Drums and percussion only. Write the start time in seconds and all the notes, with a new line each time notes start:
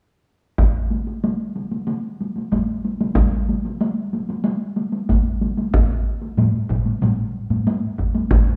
0.58 taiko, taiko high
0.90 taiko high
1.07 taiko high
1.24 taiko high
1.56 taiko high
1.72 taiko high
1.88 taiko high
2.21 taiko high
2.36 taiko high
2.52 taiko, taiko high
2.85 taiko high
3.01 taiko high
3.15 taiko, taiko high
3.49 taiko high
3.65 taiko high
3.81 taiko high
4.13 taiko high
4.29 taiko high
4.44 taiko high
4.76 taiko high
4.92 taiko high
5.09 taiko, taiko high
5.41 taiko high
5.57 taiko high
5.74 taiko, taiko high
6.22 taiko high
6.37 taiko low-mid, taiko high
6.69 taiko, taiko low-mid
6.86 taiko high
7.02 taiko low-mid, taiko high
7.50 taiko low-mid, taiko high
7.67 taiko high
7.98 taiko
8.15 taiko high
8.31 taiko, taiko high